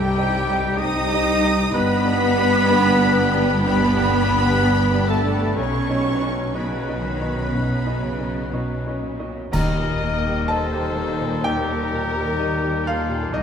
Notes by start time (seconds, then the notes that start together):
Already playing: C2 G2 G3 C4 D#4 G4 D#5 G5
0.17 C4 G4 D#5
0.50 C4 G4 D#5
0.78 C4 D#4 D#5 D#6
0.83 G4 D#5
1.14 C4 G4 D#5
1.44 C4 G4 D#5
1.73 G1 G2 B3 D4 G4 B4 B5
2.04 D4 G4 D5
2.38 D4 G4 D5
2.69 D4 G4 D5
3.01 D4 G4 D5
3.33 D4 G4 D5
3.63 D2 B3 B4 B5
3.96 D4 G4 D5
4.27 D4 G4 D5
4.59 D4 G4 D5
4.91 D4 G4 D5
5.08 A3 A4 A5
5.24 D4 G4 D5
5.56 B1 B2 C#4 D#4 C#5 C#6
5.90 C#4 F#4 D#5
6.21 C#4 F#4 D#5
6.54 C#3 B3 C#4 F#4 B4 D#5 B5
6.88 C#4 F#4 D#5
7.05 D#3
7.21 C#4 F#4 D#5
7.54 F#2 B2
7.86 C#4 F#4 D#5
8.04 C#3
8.18 C#4 F#4 D#5
8.53 B2 C#4 F#4 D#5
8.87 C#4 F#4 D#5
9.04 A#2
9.19 C#4 F#4 D#5
9.52 D#2 D#3 G3 D#4 A#4 D#5 A#5, concert bass drum, crash
9.78 A#2 G3
10.03 A#3
10.26 G3 G4
10.48 D#3 A4 C5 D#5 A5
10.74 G3 G4
10.96 A#3
11.20 A#2 G3
11.43 D#2 D#3 G4 A#4 G5
11.67 G3 A#3
11.92 A#2 A#3
12.15 G3 G4
12.39 D#3 D#5
12.62 G3 G4
12.85 A#3 F4 A4 F5
13.09 A#2 G3
13.32 C2 C3 G3 D#4 G4 D#5